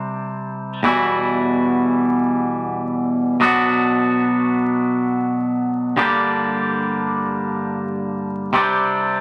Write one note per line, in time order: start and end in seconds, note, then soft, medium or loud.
0.00 0.81 C3 medium
0.00 0.81 G3 loud
0.00 0.82 C4 loud
0.00 0.82 D4 loud
0.00 0.82 G4 loud
0.83 3.38 E2 loud
0.83 3.39 B2 medium
0.83 3.39 E3 medium
0.83 3.39 G3 medium
0.83 3.39 E4 medium
0.83 3.39 F#4 medium
3.40 5.95 B2 medium
3.40 5.95 F#3 medium
3.40 5.95 B3 loud
3.40 5.98 D4 medium
3.40 5.96 F#4 medium
5.97 8.51 G2 medium
5.97 8.52 D3 medium
5.97 8.52 G3 medium
5.97 8.52 A#3 medium
5.97 8.54 D4 medium
5.97 8.53 G4 medium
8.53 9.21 C3 medium
8.53 9.21 G3 loud
8.53 9.21 C4 loud
8.53 9.21 D4 medium
8.53 9.21 G4 loud